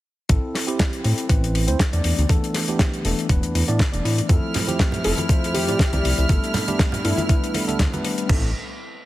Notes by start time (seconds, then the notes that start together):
0.29 A1 C4 E4 A4, kick, closed hi-hat
0.55 snare, open hi-hat
0.67 C4 E4 G4, closed hi-hat
0.79 kick, snare, closed hi-hat
0.93 closed hi-hat
1.04 A2 C4 E4 A4, open hi-hat
1.18 closed hi-hat
1.29 A1 C4 E4 B4, kick, closed hi-hat
1.44 closed hi-hat
1.55 open hi-hat
1.67 D2 C4 E4 C5, closed hi-hat
1.79 kick, snare, closed hi-hat
1.92 E2 E3 A3 B3 D4 D5, closed hi-hat
2.04 E2, open hi-hat
2.18 D2, closed hi-hat
2.29 E2 E3 A3 B3 D4 A4, kick, closed hi-hat
2.44 closed hi-hat
2.54 snare, open hi-hat
2.68 E3 A3 B3 D4 G4, closed hi-hat
2.79 kick, snare, closed hi-hat
2.94 closed hi-hat
3.04 E1 E3 A3 B3 D4 A4, open hi-hat
3.19 closed hi-hat
3.29 E1 E3 A3 B3 D4 B4, kick, closed hi-hat
3.43 E2, closed hi-hat
3.55 E2, open hi-hat
3.67 A2 E3 A3 B3 D4 D5, closed hi-hat
3.79 kick, snare, closed hi-hat
3.92 E1 E3 A3 B3 D4 D5, closed hi-hat
4.05 A2, open hi-hat
4.18 closed hi-hat
4.29 F2 F3 A3 C4 E4 A4 F6, kick, closed hi-hat, high conga
4.54 snare, open hi-hat, low conga
4.67 F3 A3 C4 E4 G4, closed hi-hat, high conga
4.79 kick, snare, closed hi-hat
4.92 closed hi-hat, low conga
5.04 F1 F3 A3 C4 E4 A4, open hi-hat
5.18 closed hi-hat, high conga
5.29 F2 F3 A3 C4 E4 C5, kick, closed hi-hat
5.44 closed hi-hat
5.54 G4, open hi-hat, high conga
5.67 A2 F3 A3 C4 E4 D5, closed hi-hat
5.79 kick, snare, closed hi-hat
5.93 C2 F3 A3 C4 E4 D5, closed hi-hat, high conga
6.05 C2, open hi-hat
6.18 C2, closed hi-hat
6.29 G1 G3 A3 B3 D4 A4, kick, closed hi-hat, high conga
6.44 closed hi-hat
6.54 snare, open hi-hat, low conga
6.67 G3 A3 B3 D4 G4, closed hi-hat, high conga
6.79 kick, snare, closed hi-hat
6.92 closed hi-hat, low conga
7.04 G2 G3 A3 B3 D4 E4 A4, open hi-hat
7.17 closed hi-hat, high conga
7.29 G3 A3 B3 D4 B4, kick, closed hi-hat
7.44 closed hi-hat
7.54 G3 A3 B3 D4 A4, open hi-hat, high conga
7.67 D2 G3 A3 B3 D4 A4, closed hi-hat
7.79 D2, kick, snare, closed hi-hat
7.92 G3 A3 B3 D4 B4, closed hi-hat, high conga
8.05 open hi-hat
8.18 closed hi-hat
8.27 A1 C4 E4 A4, kick, floor tom, crash